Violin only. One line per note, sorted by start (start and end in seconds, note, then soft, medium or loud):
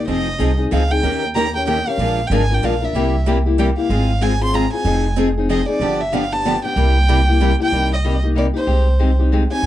0.08 0.55 D#5 medium
0.73 0.93 F5 medium
0.91 1.23 G5 loud
1.35 1.53 A#5 loud
1.56 1.67 G5 medium
1.68 1.89 G5 medium
1.88 2.29 F5 loud
2.27 2.34 G5 medium
2.32 2.56 G#5 medium
2.54 2.66 G5 medium
2.65 2.86 F5 medium
2.85 3.28 E5 medium
3.59 3.67 G5 medium
3.77 4.24 F5 medium
4.23 4.43 G#5 medium
4.44 4.56 C6 medium
4.55 4.73 A#5 medium
4.73 5.14 G#5 medium
5.50 5.67 D#5 medium
5.69 6.02 D5 medium
6.01 6.14 E5 medium
6.13 6.34 F5 medium
6.33 6.64 A5 loud
6.65 7.56 G5 loud
7.63 7.91 G5 loud
7.94 8.22 D#5 medium
8.38 8.46 D5 medium
8.56 9.15 C5 medium
9.52 9.66 G#5 loud